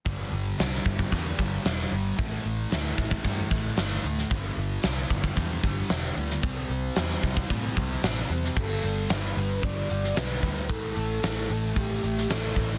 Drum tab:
CC |----------------|----------------|----------------|----------------|
HH |o---o---o---o---|o---o---o---o---|o---o---o---o---|o---o---o---o---|
SD |----oo------o---|----o-------o--o|----o-------o--o|----o-------o--o|
BD |o-----ooo-o-----|o-----ooo-o-----|o-----ooo-o-----|o-----ooo-o-----|

CC |x---------------|----------------|
HH |--o-o-o-o-o-o-o-|o-o-o-o-o-o-o-o-|
SD |----o------oo---|----o------oo---|
BD |o-------o-----o-|o-------o-----o-|